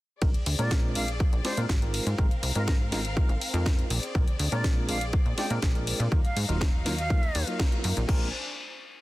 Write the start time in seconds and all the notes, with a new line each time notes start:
0.22 A#1 G#3 C4 D4 F4 G#4 A#4 D5, kick, ride
0.34 D2, closed hi-hat
0.46 D2, open hi-hat, ride
0.59 A#2 G#3 C4 D4 F4 A#4 D5, closed hi-hat
0.71 kick, snare, ride
0.95 A#1 G#3 C4 D4 F4 A#4 F5, open hi-hat, ride
1.08 closed hi-hat
1.20 kick, ride
1.33 A#1, closed hi-hat
1.44 G#3 C4 D4 F4 C5 D5, snare, open hi-hat, ride
1.57 A#2 G#3 C4 D4 F4 A#4, closed hi-hat
1.69 G#1, kick, snare, ride
1.82 G#3 C4 D#4 F4 A#4, closed hi-hat
1.93 A#4 F5, open hi-hat, ride
2.06 G#2, closed hi-hat
2.18 G#1 G#3 C4 D#4 F4 A#4, kick, ride
2.31 C2, closed hi-hat
2.43 C2, open hi-hat, ride
2.55 G#2 G#3 C4 D#4 F4 A#4, closed hi-hat
2.67 A#4, kick, snare, ride
2.92 G#1 G#3 C4 D#4 F4 A#4, snare, open hi-hat, ride
3.05 closed hi-hat
3.16 G#3 C4 D#4 F4 A#4, kick, ride
3.29 G#1, closed hi-hat
3.41 open hi-hat, ride
3.54 F2 G#3 C4 D#4 F4 A#4, closed hi-hat
3.66 kick, snare, ride
3.79 closed hi-hat
3.90 A#1 G#4 D5, open hi-hat, ride
4.03 closed hi-hat
4.15 A#1 G#3 C4 D4 F4 A#4, kick, ride
4.28 D2, closed hi-hat
4.39 D2, open hi-hat, ride
4.52 A#2 G#3 C4 D4 F4 A#4 D5, closed hi-hat
4.64 kick, snare, ride
4.88 A#1 G#3 C4 D4 F4 A#4 F5, open hi-hat, ride
5.01 closed hi-hat
5.13 kick, ride
5.26 A#1, closed hi-hat
5.38 G#3 C4 D4 F4 D5 G5, snare, open hi-hat, ride
5.50 A#2 G#3 C4 D4 F4 A#4, closed hi-hat
5.62 A#1, kick, snare, ride
5.75 G#3 C4 D4 F4 A#4, closed hi-hat
5.87 open hi-hat, ride
6.00 A#2, closed hi-hat
6.11 D#2 F#3 A#3 D#4 F4 A#4 F5, kick, ride
6.24 G#2 F5, closed hi-hat
6.36 G#2, open hi-hat, ride
6.48 D#1 F#3 A#3 D#4 F4 A#4, closed hi-hat
6.61 kick, snare, ride
6.85 D#2 F#3 A#3 D#4 F4 A#4, snare, open hi-hat, ride
6.98 F5, closed hi-hat
7.10 F#3 A#3 D#4 F4 A#4, kick, ride
7.23 D#2, closed hi-hat
7.35 D#2, open hi-hat, ride
7.47 F#3 A#3 D#4 F4 A#4, closed hi-hat
7.59 kick, snare, open hi-hat, ride
7.72 closed hi-hat
7.84 F#2, open hi-hat, ride
7.97 A#1, closed hi-hat
8.08 A#1 G#3 C4 D4 F4 A#4 C5 G#5, kick, crash